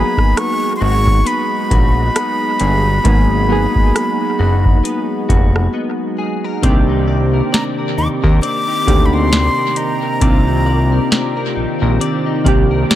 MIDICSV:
0, 0, Header, 1, 7, 480
1, 0, Start_track
1, 0, Tempo, 895522
1, 1635, Time_signature, 4, 2, 24, 8
1, 6944, End_track
2, 0, Start_track
2, 0, Title_t, "Flute"
2, 0, Program_c, 0, 73
2, 0, Note_on_c, 0, 83, 94
2, 200, Note_on_c, 0, 85, 108
2, 208, Note_off_c, 0, 83, 0
2, 406, Note_off_c, 0, 85, 0
2, 409, Note_on_c, 0, 84, 74
2, 440, Note_on_c, 0, 85, 106
2, 448, Note_off_c, 0, 84, 0
2, 680, Note_on_c, 0, 83, 103
2, 688, Note_off_c, 0, 85, 0
2, 3077, Note_off_c, 0, 83, 0
2, 4039, Note_on_c, 0, 82, 93
2, 4093, Note_off_c, 0, 82, 0
2, 4277, Note_on_c, 0, 86, 101
2, 4331, Note_off_c, 0, 86, 0
2, 4519, Note_on_c, 0, 86, 112
2, 4854, Note_on_c, 0, 83, 77
2, 4862, Note_off_c, 0, 86, 0
2, 4898, Note_on_c, 0, 84, 97
2, 4906, Note_off_c, 0, 83, 0
2, 5239, Note_on_c, 0, 82, 95
2, 5247, Note_off_c, 0, 84, 0
2, 6197, Note_off_c, 0, 82, 0
2, 6944, End_track
3, 0, Start_track
3, 0, Title_t, "Clean electric guitar"
3, 0, Program_c, 1, 27
3, 0, Note_on_c, 1, 56, 77
3, 0, Note_on_c, 1, 59, 60
3, 0, Note_on_c, 1, 63, 58
3, 430, Note_off_c, 1, 63, 0
3, 433, Note_on_c, 1, 66, 65
3, 666, Note_off_c, 1, 59, 0
3, 673, Note_on_c, 1, 59, 66
3, 907, Note_off_c, 1, 66, 0
3, 914, Note_on_c, 1, 66, 61
3, 1147, Note_off_c, 1, 59, 0
3, 1154, Note_on_c, 1, 59, 58
3, 1394, Note_on_c, 1, 68, 66
3, 1524, Note_off_c, 1, 68, 0
3, 1626, Note_off_c, 1, 56, 0
3, 1633, Note_on_c, 1, 56, 76
3, 1867, Note_off_c, 1, 59, 0
3, 1874, Note_on_c, 1, 59, 62
3, 2347, Note_off_c, 1, 66, 0
3, 2354, Note_on_c, 1, 66, 63
3, 2588, Note_off_c, 1, 59, 0
3, 2594, Note_on_c, 1, 59, 67
3, 2828, Note_off_c, 1, 66, 0
3, 2834, Note_on_c, 1, 66, 62
3, 3068, Note_off_c, 1, 59, 0
3, 3074, Note_on_c, 1, 59, 63
3, 3315, Note_on_c, 1, 68, 61
3, 3454, Note_off_c, 1, 68, 0
3, 3454, Note_on_c, 1, 70, 58
3, 3553, Note_off_c, 1, 59, 0
3, 3554, Note_off_c, 1, 56, 0
3, 3555, Note_on_c, 1, 60, 83
3, 3558, Note_on_c, 1, 74, 69
3, 3610, Note_off_c, 1, 66, 0
3, 3611, Note_off_c, 1, 70, 0
3, 3693, Note_on_c, 1, 63, 59
3, 3786, Note_off_c, 1, 74, 0
3, 3793, Note_on_c, 1, 74, 68
3, 3933, Note_on_c, 1, 70, 60
3, 4027, Note_off_c, 1, 74, 0
3, 4033, Note_on_c, 1, 74, 65
3, 4171, Note_off_c, 1, 70, 0
3, 4173, Note_on_c, 1, 70, 59
3, 4272, Note_off_c, 1, 63, 0
3, 4274, Note_on_c, 1, 63, 67
3, 4412, Note_off_c, 1, 70, 0
3, 4414, Note_on_c, 1, 70, 68
3, 4507, Note_off_c, 1, 60, 0
3, 4511, Note_off_c, 1, 74, 0
3, 4514, Note_on_c, 1, 60, 86
3, 4517, Note_on_c, 1, 74, 70
3, 4651, Note_off_c, 1, 63, 0
3, 4653, Note_on_c, 1, 63, 63
3, 4747, Note_off_c, 1, 74, 0
3, 4754, Note_on_c, 1, 74, 69
3, 4891, Note_off_c, 1, 70, 0
3, 4893, Note_on_c, 1, 70, 60
3, 4988, Note_off_c, 1, 74, 0
3, 4994, Note_on_c, 1, 74, 69
3, 5131, Note_off_c, 1, 70, 0
3, 5133, Note_on_c, 1, 70, 60
3, 5232, Note_off_c, 1, 63, 0
3, 5234, Note_on_c, 1, 63, 56
3, 5371, Note_off_c, 1, 70, 0
3, 5373, Note_on_c, 1, 70, 59
3, 5468, Note_off_c, 1, 60, 0
3, 5471, Note_off_c, 1, 74, 0
3, 5474, Note_on_c, 1, 60, 78
3, 5478, Note_on_c, 1, 74, 67
3, 5611, Note_off_c, 1, 63, 0
3, 5613, Note_on_c, 1, 63, 63
3, 5708, Note_off_c, 1, 74, 0
3, 5714, Note_on_c, 1, 74, 74
3, 5851, Note_off_c, 1, 70, 0
3, 5853, Note_on_c, 1, 70, 62
3, 5947, Note_off_c, 1, 74, 0
3, 5953, Note_on_c, 1, 74, 67
3, 6091, Note_off_c, 1, 70, 0
3, 6093, Note_on_c, 1, 70, 59
3, 6192, Note_off_c, 1, 63, 0
3, 6194, Note_on_c, 1, 63, 65
3, 6331, Note_off_c, 1, 70, 0
3, 6333, Note_on_c, 1, 70, 64
3, 6427, Note_off_c, 1, 60, 0
3, 6430, Note_off_c, 1, 74, 0
3, 6434, Note_on_c, 1, 60, 85
3, 6437, Note_on_c, 1, 74, 71
3, 6571, Note_off_c, 1, 63, 0
3, 6573, Note_on_c, 1, 63, 63
3, 6666, Note_off_c, 1, 74, 0
3, 6672, Note_on_c, 1, 74, 67
3, 6810, Note_off_c, 1, 70, 0
3, 6812, Note_on_c, 1, 70, 61
3, 6907, Note_off_c, 1, 74, 0
3, 6913, Note_on_c, 1, 74, 66
3, 6944, Note_off_c, 1, 60, 0
3, 6944, Note_off_c, 1, 63, 0
3, 6944, Note_off_c, 1, 70, 0
3, 6944, Note_off_c, 1, 74, 0
3, 6944, End_track
4, 0, Start_track
4, 0, Title_t, "Analog synth pad"
4, 0, Program_c, 2, 89
4, 0, Note_on_c, 2, 56, 69
4, 0, Note_on_c, 2, 63, 72
4, 0, Note_on_c, 2, 66, 82
4, 3534, Note_off_c, 2, 56, 0
4, 3534, Note_off_c, 2, 63, 0
4, 3534, Note_off_c, 2, 66, 0
4, 3554, Note_on_c, 2, 48, 83
4, 3554, Note_on_c, 2, 67, 84
4, 3554, Note_on_c, 2, 74, 72
4, 3555, Note_on_c, 2, 60, 73
4, 5455, Note_off_c, 2, 74, 0
4, 5475, Note_on_c, 2, 51, 69
4, 6944, Note_off_c, 2, 48, 0
4, 6944, Note_off_c, 2, 51, 0
4, 6944, Note_off_c, 2, 60, 0
4, 6944, Note_off_c, 2, 67, 0
4, 6944, End_track
5, 0, Start_track
5, 0, Title_t, "Synth keys"
5, 0, Program_c, 3, 88
5, 0, Control_c, 3, 64, 127
5, 0, Note_on_c, 3, 54, 74
5, 0, Note_on_c, 3, 58, 70
5, 0, Note_on_c, 3, 59, 72
5, 0, Note_on_c, 3, 63, 72
5, 0, Note_on_c, 3, 68, 87
5, 632, Note_off_c, 3, 54, 0
5, 634, Note_off_c, 3, 58, 0
5, 637, Note_off_c, 3, 59, 0
5, 639, Note_off_c, 3, 63, 0
5, 642, Note_off_c, 3, 68, 0
5, 1629, Note_on_c, 3, 54, 90
5, 1634, Note_on_c, 3, 58, 83
5, 1639, Note_on_c, 3, 59, 84
5, 1645, Note_on_c, 3, 63, 78
5, 1649, Note_on_c, 3, 68, 99
5, 1811, Note_off_c, 3, 54, 0
5, 1814, Note_off_c, 3, 58, 0
5, 1816, Note_off_c, 3, 59, 0
5, 1819, Note_off_c, 3, 63, 0
5, 1821, Note_off_c, 3, 68, 0
5, 1868, Note_on_c, 3, 54, 92
5, 1872, Note_on_c, 3, 58, 84
5, 1877, Note_on_c, 3, 59, 84
5, 1883, Note_on_c, 3, 63, 87
5, 1887, Note_on_c, 3, 68, 104
5, 2551, Note_off_c, 3, 54, 0
5, 2553, Note_off_c, 3, 58, 0
5, 2556, Note_off_c, 3, 59, 0
5, 2558, Note_off_c, 3, 63, 0
5, 2561, Note_off_c, 3, 68, 0
5, 3548, Note_on_c, 3, 50, 73
5, 3552, Note_on_c, 3, 58, 78
5, 3557, Note_on_c, 3, 60, 80
5, 3562, Note_on_c, 3, 62, 86
5, 3563, Control_c, 3, 64, 0
5, 3567, Note_on_c, 3, 67, 94
5, 3582, Note_on_c, 3, 51, 89
5, 3592, Note_off_c, 3, 50, 0
5, 3661, Control_c, 3, 64, 127
5, 4233, Note_off_c, 3, 58, 0
5, 4236, Note_off_c, 3, 60, 0
5, 4238, Note_off_c, 3, 62, 0
5, 4241, Note_off_c, 3, 67, 0
5, 4248, Note_off_c, 3, 51, 0
5, 4748, Note_on_c, 3, 63, 77
5, 4753, Note_on_c, 3, 58, 69
5, 4758, Note_on_c, 3, 60, 70
5, 4763, Note_on_c, 3, 62, 70
5, 4768, Note_on_c, 3, 67, 88
5, 5259, Note_off_c, 3, 63, 0
5, 5262, Note_off_c, 3, 58, 0
5, 5264, Note_off_c, 3, 60, 0
5, 5267, Note_off_c, 3, 62, 0
5, 5269, Note_off_c, 3, 67, 0
5, 5469, Note_on_c, 3, 51, 77
5, 5474, Note_on_c, 3, 58, 68
5, 5479, Note_on_c, 3, 60, 68
5, 5484, Note_on_c, 3, 62, 68
5, 5489, Note_on_c, 3, 65, 84
5, 6151, Note_off_c, 3, 51, 0
5, 6154, Note_off_c, 3, 58, 0
5, 6157, Note_off_c, 3, 60, 0
5, 6159, Note_off_c, 3, 62, 0
5, 6162, Note_off_c, 3, 65, 0
5, 6669, Note_on_c, 3, 51, 92
5, 6673, Note_on_c, 3, 58, 87
5, 6678, Note_on_c, 3, 60, 80
5, 6684, Note_on_c, 3, 62, 81
5, 6689, Note_on_c, 3, 67, 107
5, 6944, Note_off_c, 3, 51, 0
5, 6944, Note_off_c, 3, 58, 0
5, 6944, Note_off_c, 3, 60, 0
5, 6944, Note_off_c, 3, 62, 0
5, 6944, Note_off_c, 3, 67, 0
5, 6944, End_track
6, 0, Start_track
6, 0, Title_t, "Analog synth bass"
6, 0, Program_c, 4, 38
6, 93, Note_on_c, 4, 32, 47
6, 134, Note_off_c, 4, 32, 0
6, 436, Note_on_c, 4, 32, 98
6, 645, Note_off_c, 4, 32, 0
6, 915, Note_on_c, 4, 34, 89
6, 1124, Note_off_c, 4, 34, 0
6, 1396, Note_on_c, 4, 31, 99
6, 1605, Note_off_c, 4, 31, 0
6, 1635, Note_on_c, 4, 32, 108
6, 1966, Note_off_c, 4, 32, 0
6, 2013, Note_on_c, 4, 30, 50
6, 2054, Note_off_c, 4, 30, 0
6, 2356, Note_on_c, 4, 30, 99
6, 2565, Note_off_c, 4, 30, 0
6, 2837, Note_on_c, 4, 29, 94
6, 3046, Note_off_c, 4, 29, 0
6, 3556, Note_on_c, 4, 36, 105
6, 3975, Note_off_c, 4, 36, 0
6, 4276, Note_on_c, 4, 39, 52
6, 4332, Note_off_c, 4, 39, 0
6, 4414, Note_on_c, 4, 39, 99
6, 4502, Note_off_c, 4, 39, 0
6, 4756, Note_on_c, 4, 38, 90
6, 5087, Note_off_c, 4, 38, 0
6, 5475, Note_on_c, 4, 36, 116
6, 5894, Note_off_c, 4, 36, 0
6, 6197, Note_on_c, 4, 34, 51
6, 6252, Note_off_c, 4, 34, 0
6, 6336, Note_on_c, 4, 34, 90
6, 6423, Note_off_c, 4, 34, 0
6, 6676, Note_on_c, 4, 36, 97
6, 6885, Note_off_c, 4, 36, 0
6, 6944, End_track
7, 0, Start_track
7, 0, Title_t, "Drums"
7, 92, Note_on_c, 9, 36, 87
7, 99, Note_on_c, 9, 37, 68
7, 146, Note_off_c, 9, 36, 0
7, 153, Note_off_c, 9, 37, 0
7, 200, Note_on_c, 9, 37, 105
7, 200, Note_on_c, 9, 42, 68
7, 253, Note_off_c, 9, 37, 0
7, 254, Note_off_c, 9, 42, 0
7, 573, Note_on_c, 9, 36, 92
7, 626, Note_off_c, 9, 36, 0
7, 678, Note_on_c, 9, 42, 68
7, 732, Note_off_c, 9, 42, 0
7, 914, Note_on_c, 9, 36, 87
7, 918, Note_on_c, 9, 42, 58
7, 968, Note_off_c, 9, 36, 0
7, 972, Note_off_c, 9, 42, 0
7, 1157, Note_on_c, 9, 37, 111
7, 1157, Note_on_c, 9, 42, 88
7, 1210, Note_off_c, 9, 42, 0
7, 1211, Note_off_c, 9, 37, 0
7, 1391, Note_on_c, 9, 42, 67
7, 1445, Note_off_c, 9, 42, 0
7, 1634, Note_on_c, 9, 36, 116
7, 1634, Note_on_c, 9, 42, 71
7, 1688, Note_off_c, 9, 36, 0
7, 1688, Note_off_c, 9, 42, 0
7, 2013, Note_on_c, 9, 36, 88
7, 2066, Note_off_c, 9, 36, 0
7, 2120, Note_on_c, 9, 37, 108
7, 2121, Note_on_c, 9, 42, 73
7, 2174, Note_off_c, 9, 37, 0
7, 2175, Note_off_c, 9, 42, 0
7, 2493, Note_on_c, 9, 36, 98
7, 2547, Note_off_c, 9, 36, 0
7, 2600, Note_on_c, 9, 42, 66
7, 2654, Note_off_c, 9, 42, 0
7, 2836, Note_on_c, 9, 36, 91
7, 2841, Note_on_c, 9, 42, 60
7, 2889, Note_off_c, 9, 36, 0
7, 2894, Note_off_c, 9, 42, 0
7, 2978, Note_on_c, 9, 37, 92
7, 3032, Note_off_c, 9, 37, 0
7, 3555, Note_on_c, 9, 36, 118
7, 3556, Note_on_c, 9, 42, 71
7, 3609, Note_off_c, 9, 36, 0
7, 3609, Note_off_c, 9, 42, 0
7, 4041, Note_on_c, 9, 38, 105
7, 4042, Note_on_c, 9, 42, 70
7, 4095, Note_off_c, 9, 38, 0
7, 4095, Note_off_c, 9, 42, 0
7, 4414, Note_on_c, 9, 36, 93
7, 4467, Note_off_c, 9, 36, 0
7, 4519, Note_on_c, 9, 42, 71
7, 4573, Note_off_c, 9, 42, 0
7, 4756, Note_on_c, 9, 36, 86
7, 4760, Note_on_c, 9, 42, 62
7, 4809, Note_off_c, 9, 36, 0
7, 4814, Note_off_c, 9, 42, 0
7, 4999, Note_on_c, 9, 38, 106
7, 4999, Note_on_c, 9, 42, 92
7, 5052, Note_off_c, 9, 42, 0
7, 5053, Note_off_c, 9, 38, 0
7, 5233, Note_on_c, 9, 42, 73
7, 5286, Note_off_c, 9, 42, 0
7, 5474, Note_on_c, 9, 36, 119
7, 5475, Note_on_c, 9, 42, 74
7, 5528, Note_off_c, 9, 36, 0
7, 5529, Note_off_c, 9, 42, 0
7, 5960, Note_on_c, 9, 38, 112
7, 5961, Note_on_c, 9, 42, 73
7, 6013, Note_off_c, 9, 38, 0
7, 6014, Note_off_c, 9, 42, 0
7, 6439, Note_on_c, 9, 42, 67
7, 6493, Note_off_c, 9, 42, 0
7, 6675, Note_on_c, 9, 36, 89
7, 6681, Note_on_c, 9, 42, 62
7, 6729, Note_off_c, 9, 36, 0
7, 6734, Note_off_c, 9, 42, 0
7, 6918, Note_on_c, 9, 42, 87
7, 6919, Note_on_c, 9, 38, 114
7, 6944, Note_off_c, 9, 38, 0
7, 6944, Note_off_c, 9, 42, 0
7, 6944, End_track
0, 0, End_of_file